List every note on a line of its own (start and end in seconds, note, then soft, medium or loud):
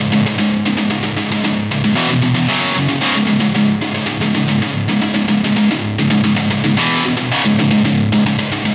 0.00 0.12 C#2 medium
0.00 0.11 G#2 medium
0.12 0.25 C#2 medium
0.12 0.25 G#2 medium
0.26 0.37 C#2 medium
0.26 0.38 G#2 medium
0.38 0.62 C#2 medium
0.38 0.63 G#2 loud
0.65 0.77 C#2 medium
0.65 0.76 G#2 medium
0.77 0.89 C#2 medium
0.77 0.89 G#2 medium
0.90 1.02 C#2 medium
0.90 1.02 G#2 medium
1.03 1.16 C#2 medium
1.03 1.15 G#2 medium
1.17 1.30 C#2 medium
1.17 1.30 G#2 medium
1.31 1.43 C#2 medium
1.31 1.44 G#2 medium
1.44 1.68 C#2 medium
1.44 1.69 G#2 loud
1.71 1.83 C#2 medium
1.71 1.83 G#2 medium
1.84 1.95 C#2 medium
1.84 1.95 G#2 medium
1.95 2.08 E2 loud
1.95 2.08 B2 loud
1.95 2.09 E3 loud
2.09 2.22 E2 medium
2.09 2.21 B2 medium
2.22 2.35 E2 medium
2.22 2.33 B2 medium
2.35 2.48 E2 medium
2.35 2.49 B2 medium
2.48 2.74 F#2 medium
2.48 2.74 C#3 loud
2.48 2.76 F#3 loud
2.75 2.88 F#2 medium
2.75 2.87 C#3 medium
2.88 3.01 F#2 medium
2.88 3.01 C#3 medium
3.01 3.14 C#2 medium
3.01 3.14 G#2 medium
3.01 3.15 C#3 loud
3.15 3.27 C#2 medium
3.15 3.25 G#2 medium
3.27 3.40 C#2 medium
3.27 3.39 G#2 medium
3.40 3.53 C#2 medium
3.40 3.54 G#2 medium
3.54 3.80 C#2 medium
3.54 3.80 G#2 medium
3.81 3.93 C#2 medium
3.81 3.93 G#2 medium
3.94 4.05 C#2 medium
3.94 4.05 G#2 medium
4.06 4.20 C#2 medium
4.06 4.20 G#2 loud
4.21 4.33 C#2 medium
4.21 4.33 G#2 medium
4.34 4.47 C#2 medium
4.34 4.47 G#2 medium
4.48 4.61 C#2 medium
4.48 4.61 G#2 medium
4.62 4.87 C#2 medium
4.62 4.87 G#2 loud
4.88 5.01 C#2 medium
4.88 5.00 G#2 medium
5.01 5.13 C#2 medium
5.01 5.13 G#2 medium
5.14 5.27 C#2 medium
5.14 5.27 G#2 medium
5.28 5.43 C#2 medium
5.28 5.43 G#2 medium
5.44 5.56 C#2 medium
5.44 5.55 G#2 medium
5.56 5.69 C#2 medium
5.56 5.70 G#2 medium
5.70 5.95 C#2 medium
5.70 5.95 G#2 medium
5.99 6.10 C#2 medium
5.99 6.09 G#2 medium
6.10 6.22 C#2 medium
6.10 6.23 G#2 medium
6.24 6.35 C#2 medium
6.24 6.35 G#2 medium
6.36 6.50 C#2 medium
6.36 6.49 G#2 medium
6.51 6.63 C#2 medium
6.51 6.63 G#2 medium
6.64 6.76 C#2 medium
6.64 6.77 G#2 medium
6.77 7.02 E2 loud
6.77 7.02 B2 medium
6.77 7.03 E3 loud
7.04 7.17 E2 medium
7.04 7.16 B2 medium
7.17 7.31 E2 medium
7.17 7.30 B2 medium
7.31 7.43 C#2 medium
7.31 7.43 G#2 medium
7.31 7.44 C#3 loud
7.45 7.58 C#2 medium
7.45 7.58 G#2 medium
7.59 7.71 C#2 medium
7.59 7.70 G#2 medium
7.71 7.84 C#2 medium
7.71 7.84 G#2 medium
7.85 8.08 C#2 medium
7.85 8.08 G#2 medium
8.12 8.25 C#2 medium
8.12 8.25 G#2 medium
8.26 8.37 C#2 medium
8.26 8.38 G#2 medium
8.38 8.51 C#2 medium
8.38 8.51 G#2 medium
8.52 8.64 C#2 medium
8.52 8.64 G#2 medium
8.65 8.75 C#2 medium
8.65 8.75 G#2 medium